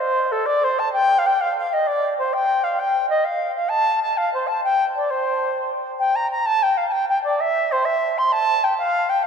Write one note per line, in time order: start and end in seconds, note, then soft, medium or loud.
0.00 0.33 C5 loud
0.32 0.48 A4 loud
0.46 0.66 D5 loud
0.64 0.81 C5 loud
0.79 0.92 A5 loud
0.93 1.20 G5 loud
1.19 1.28 F5 loud
1.27 1.42 G5 loud
1.41 1.56 F5 loud
1.59 1.75 F5 medium
1.73 1.88 D#5 medium
1.87 2.17 D5 loud
2.19 2.35 C5 medium
2.34 2.65 G5 loud
2.64 2.81 F5 medium
2.79 3.09 G5 loud
3.10 3.26 D#5 medium
3.25 3.55 F5 loud
3.56 3.71 F5 medium
3.69 4.00 A5 loud
4.02 4.19 A5 medium
4.17 4.33 F5 loud
4.34 4.49 C5 medium
4.47 4.61 A5 medium
4.64 4.85 G5 loud
4.96 5.12 D5 medium
5.10 5.72 C5 medium
5.99 6.17 G5 loud
6.16 6.31 A#5 loud
6.31 6.47 A#5 loud
6.46 6.64 A5 loud
6.63 6.79 G5 loud
6.77 6.88 F5 loud
6.89 7.08 G5 loud
6.89 6.93 A5 medium
7.09 7.22 G5 loud
7.24 7.42 D5 loud
7.41 7.73 E5 loud
7.72 7.87 C5 loud
7.85 8.20 E5 loud
8.18 8.34 C6 loud
8.32 8.65 A5 loud
8.64 8.78 G5 loud
8.78 9.11 F5 loud
9.09 9.25 G5 loud
9.23 9.27 F5 loud